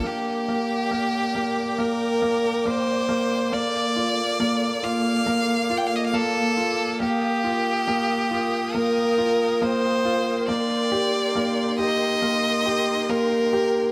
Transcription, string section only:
0.04 A#4 D5 G5 D6
3.52 A#3 A4 F5
6.99 A#4 G5 D#6
10.48 D#4 G5 C6

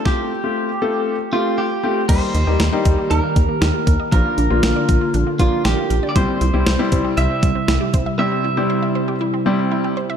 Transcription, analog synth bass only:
2.09 D#2
2.34 D#2
2.47 D#2
2.60 D#2
2.86 D#2
3.11 D#2
3.36 D#2
3.62 D#2
3.87 D#2
4.12 A#1
4.38 A#1
4.51 A#1
4.63 A#1
4.89 A#1
5.14 A#1
5.39 A#1
5.65 A#1
5.90 A#1
6.16 C2
6.41 C2
6.54 C2
6.67 C2
6.92 C2
7.17 C2
7.43 C2
7.68 C2
7.94 C2

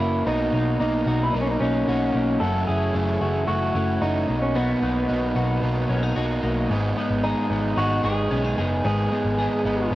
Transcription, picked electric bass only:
0.00 F#1
0.26 B1
0.53 B1
0.80 B1
1.06 B1
1.34 B1
1.61 B1
1.87 B1
2.14 B1
2.41 F#1
2.68 F#1
2.95 F#1
3.21 F#1
3.48 F#1
3.75 F#1
4.02 F#1
4.29 B1
4.83 B1
5.09 B1
5.36 B1
5.63 B1
5.89 B1
6.16 B1
6.43 B1
6.70 G#1
7.10 G#1
7.50 G#1
7.77 G#1
8.04 G#1
8.31 B1
8.58 F#1
8.85 G#1
9.25 G#1
9.65 G#1
9.91 G#1

